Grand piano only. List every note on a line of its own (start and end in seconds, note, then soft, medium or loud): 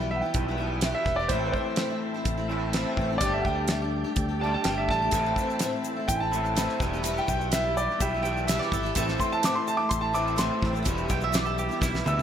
0.11 0.22 E5 medium
0.16 0.20 F#5 medium
0.21 0.92 G5 medium
0.95 1.18 E5 medium
1.16 1.28 D5 medium
1.28 1.51 C5 medium
1.47 1.51 B4 medium
1.52 2.93 C5 medium
3.18 3.31 D5 medium
3.34 3.45 E5 medium
3.40 3.44 F#5 medium
3.46 4.38 G5 medium
4.41 4.52 A5 medium
4.54 4.65 A5 medium
4.64 4.76 G5 medium
4.78 4.89 E5 medium
4.90 5.83 A5 loud
6.08 6.19 G5 loud
6.15 6.19 G#5 medium
6.20 7.13 A5 medium
7.18 7.27 G5 medium
7.29 7.52 G5 medium
7.53 7.76 E5 medium
7.77 8.00 D5 medium
8.01 8.23 G4 loud
8.01 8.24 E5 loud
9.20 9.31 C6 medium
9.32 9.43 A5 loud
9.45 9.56 D6 medium
9.55 9.67 C6 medium
9.68 9.79 A5 medium
9.77 9.89 D6 medium
9.89 10.01 C6 loud
10.01 10.13 A5 medium
10.14 10.38 D6 loud
10.38 10.85 C6 loud
12.08 12.22 E6 loud